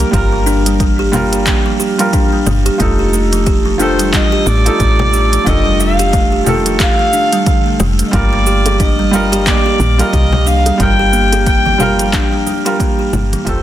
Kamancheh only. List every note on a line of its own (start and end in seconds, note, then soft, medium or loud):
0.13 0.76 A#4 medium
3.81 4.12 C5 medium
4.14 4.48 D#5 loud
4.47 5.48 D5 loud
5.47 5.81 D#5 loud
5.80 6.47 F5 loud
6.80 7.76 F5 loud
8.07 8.15 D#5 medium
8.13 8.80 D5 medium
8.80 9.49 D#5 medium
9.47 10.01 D5 loud
10.00 10.49 D#5 loud
10.47 10.82 F5 loud
10.81 11.46 G5 loud
11.47 12.09 G5 loud
13.47 13.63 C5 loud